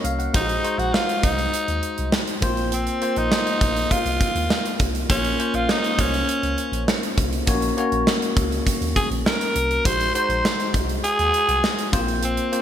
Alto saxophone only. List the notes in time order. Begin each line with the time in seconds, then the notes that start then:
0.36 D#4
0.79 F#4
0.93 F4
1.24 D#4
2.73 C4
3.18 D#4
3.92 F4
5.10 C#4
5.55 F4
5.70 D#4
6.00 C#4
8.96 G#4
9.26 A#4
9.85 C5
10.15 C5
11.04 G#4
12.24 C4